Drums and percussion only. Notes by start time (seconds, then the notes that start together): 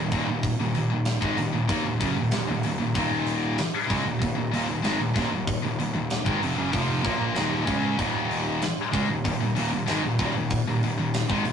0.11 kick, open hi-hat
0.43 kick, open hi-hat
0.75 open hi-hat
1.05 snare, open hi-hat
1.22 kick
1.38 open hi-hat
1.69 kick, open hi-hat
2.00 kick, open hi-hat
2.31 snare, open hi-hat
2.63 open hi-hat
2.95 kick, open hi-hat
3.27 open hi-hat
3.58 snare, open hi-hat
3.90 kick, open hi-hat
4.22 kick, open hi-hat
4.54 open hi-hat
4.84 snare, open hi-hat
5.16 kick, open hi-hat
5.47 kick, open hi-hat
5.80 open hi-hat
6.10 snare, open hi-hat
6.26 kick
6.43 open hi-hat
6.73 kick, open hi-hat
7.05 kick, open hi-hat
7.36 snare, open hi-hat
7.67 kick, open hi-hat
7.99 kick, open hi-hat
8.31 open hi-hat
8.62 snare, open hi-hat
8.93 kick, open hi-hat
9.25 kick, open hi-hat
9.56 open hi-hat
9.88 snare, open hi-hat
10.19 kick, open hi-hat
10.50 kick, open hi-hat
10.83 open hi-hat
11.14 snare, open hi-hat
11.30 kick
11.45 open hi-hat